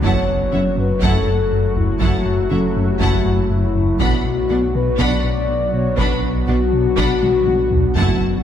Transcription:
0.03 F#1 F#2 E3 F#3 A3 E4 F#4 C#5 F#5 A5, taiko
0.29 F#2
0.52 F#1 F#2 F#3 C#4 E4 E5 F#5
0.77 F#2 B4
1.02 F#1 F#2 E3 F#3 A3 E4 A4 F#5 A5, taiko
1.27 F#2
1.52 F#2
1.76 F#2 E4, taiko low
2.00 F#1 F#2 E3 F#3 A3 E4 F#4 F#5 A5, taiko
2.25 F#2
2.50 F#1 F#2 F#3 C#4 E4 A4 E5 F#5
2.76 F#2
2.89 G4
3.00 F#1 F#2 E3 F#3 A3 E4 F#4 F#5 A5, taiko
3.25 F#2
3.50 F#2 E4
3.75 F#2, taiko low
3.99 B1 B2 D3 F#3 B3 D4 F#4 F#5 B5, taiko
4.25 B2
4.49 B1 B2 B3 D4 F#4 D5 F#5
4.74 B2 B4
4.99 B1 B2 D3 B3 D4 D5 F#5 B5, taiko
5.24 B2
5.48 B2
5.73 B2 C#5
5.97 B1 B2 D3 B3 D4 B4 F#5 B5, taiko
6.23 B2
6.47 B1 B2 B3 D4 F#4 D5 F#5
6.73 B2
6.97 B1 B2 D3 B3 D4 F#5 B5, taiko
7.22 B2, taiko high
7.47 B2, taiko high
7.71 B2, taiko low
7.96 F#1 F#2 E3 F#3 A3 E4 F#4 F#5 A5, taiko
8.21 F#2

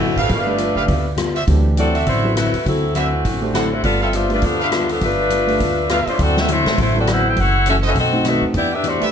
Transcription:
Already playing: A1 E3 A3 C4 F#4
0.00 D3 F#3 C4 E4
0.16 A1 F#3 E4 G4 A4 B4 F5, open hi-hat
0.20 C4
0.29 G1 G3 A3 B3 D4 F4 A4 B4, kick, open hi-hat
0.46 A3 D4 G4 B4
0.57 G3 B3 F4 A4, closed hi-hat
0.75 F#1 G4 A4 B4 F5
0.86 D2 G3 B3 F4 A4, kick, open hi-hat
1.17 G3 B3 F4 A4, cross-stick, closed hi-hat
1.35 F#4 C5 D5 E5, open hi-hat
1.47 D2 D3 E3 F#3 A3 C4 D4 E4 G4, kick, open hi-hat
1.77 D3 F#3 C4 E4 F#4 A4 D5, closed hi-hat
1.94 F#4 C5 D5 E5, open hi-hat
2.06 A1 D3 F#3 A3 C4 E4 F#4 C5, kick, open hi-hat
2.23 F#3 B3 E4 A4
2.34 D3 F#3 A3 C4 E4 F#4 B4, cross-stick, closed hi-hat
2.53 D#2, open hi-hat
2.65 D2 D3 F#3 C4 E4 A4, kick, open hi-hat
2.94 D3 E3 F#3 A3 C4 E4 F#4 C5 D5 E5, closed hi-hat
3.25 A1 D3 F#3 C4 E4, kick, open hi-hat
3.42 A3 D4 G4 C5
3.52 D3 F#3 C4 E4 F#4 A4 C5 D5 F#5, cross-stick, closed hi-hat
3.72 A3 E4 F#4 C5
3.83 G1 G3 B3 F4 A4 D5, kick, open hi-hat
4.00 C4 F4 G4 A4 B4 E5 F5
4.13 G3 A3 B3 D4 F4 A4 C5, closed hi-hat
4.29 A3 D4 F4 G4 B4, open hi-hat
4.42 D2 F3 G3 B3 D4 F4 A4, kick, open hi-hat
4.60 A3 B3 D4 F4 G4 A4 B4 F5
4.71 G3 B3 F4 A4, cross-stick, closed hi-hat
4.89 F3 B3 D4 A4, open hi-hat
5.01 G1 G3 A3 B3 D4 F4 A4 B4, kick, open hi-hat
5.30 G3 B3 F4 A4, closed hi-hat
5.47 A3 D4 G4 B4, open hi-hat
5.60 D2 G3 B3 F4 A4, kick, open hi-hat
5.89 G3 A3 B3 D4 F4 G4 A4 B4 F5, cross-stick, closed hi-hat
6.06 A3 D4 F4 C5, muted upright bass stroke, open hi-hat
6.19 D2 D3 F#3 C4 E4 F#4 A4 D5, kick, open hi-hat
6.37 C4 F#4 A4 E5, snare
6.48 D3 F#3 A3 C4 E4 F#4 C5, closed hi-hat
6.65 A2, snare, open hi-hat
6.76 A1 D3 F#3 A3 C4 E4 C5, kick, open hi-hat
6.81 E4 F#4
6.96 F#3 B3 C4 E4 F#4 A4 D5
7.05 D3 F#3 C4 E4, cross-stick, closed hi-hat
7.11 E4 A4 C5 F#5
7.28 E4 A4 C5 G5
7.35 F#1 F#2 E3 A3 C#4, kick, open hi-hat
7.39 E4 A4 C#5 F#5
7.66 F#2 E3 A3 C#4 F#4 A4 E5, closed hi-hat
7.83 C#4 F#4 A4 B4 C5 D#5 E5, open hi-hat
7.87 A4
7.95 B1 B2 D#3 A3 C4, kick, open hi-hat
7.99 F#4 A4 D#5
8.12 A3 C4 D#4 F#4
8.24 B2 D#3 A3 C4 F#4, cross-stick, closed hi-hat
8.28 D#4 B4
8.41 D#2
8.53 E2 E3 B3 D4 E4 G4 D5, kick, open hi-hat
8.74 D4 G4 B4 E5
8.84 E3 A3 B3 D4 F#4 G4 C5, closed hi-hat
9.00 A3 D4 G4 B4 D5 E5, muted upright bass stroke, open hi-hat

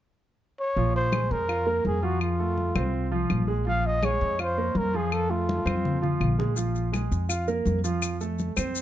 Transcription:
0.60 C#5
0.76 A#1 F3 F4, high conga
0.94 C5, high conga
1.12 G#3 G#4, high conga, claves
1.31 F2 A#4, high conga
1.49 F4 F5, high conga, claves
1.66 A#3 A#4, high conga
1.85 F2 G#4, high conga
2.03 F3 F4 F#4, high conga
2.21 F4, high conga, claves
2.39 A3 A4, high conga
2.58 high conga
2.75 C2 C4 C5, high conga, claves
2.94 high conga
3.12 F3 F4, high conga
3.30 A#1, high conga, claves
3.48 G#3 G#4, high conga
3.67 F3 F4 F5, high conga
3.84 D#5, high conga
4.02 G#3 G#4 C#5, high conga, claves
4.21 F2, high conga
4.39 F4 C5 F5, high conga, claves
4.57 A#3 A#4, high conga
4.75 F2 A#4, high conga
4.93 F3 F4 G#4, high conga
5.12 A4, high conga, claves
5.29 A3 F4 A4, high conga
5.49 high conga
5.65 F2 C4 C5, high conga, claves
5.85 low conga
6.02 F3 F4, low conga
6.21 A#1, low conga, claves
6.38 G#3 G#4, low conga
6.56 F3 F4, high conga, maracas
6.75 high conga, maracas
6.92 G#3 G#4, high conga, claves, maracas
7.11 F2, high conga, maracas
7.29 F4 F5, high conga, claves, maracas
7.48 A#3 A#4, high conga, maracas
7.66 F2, high conga, maracas
7.84 F3 F4, high conga, maracas
8.02 high conga, claves, maracas
8.21 A3 A4, high conga, maracas
8.39 high conga, maracas
8.56 F2 C4 C5, high conga, claves, maracas
8.75 maracas

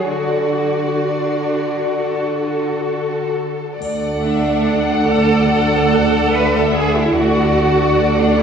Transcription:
0.08 D3 F#4 A4 D5
1.04 D4
1.96 A4
2.42 A4
3.81 D2 A3 A4 D5 F#5, triangle
4.24 D4 E5
4.69 F#5
5.09 A4 D5
5.51 A4 F#5
6.34 B4 E5
6.56 A4
6.76 G#4
6.97 E4
7.16 D2 A3 F#4 A4 D5 F#5
8.20 D4

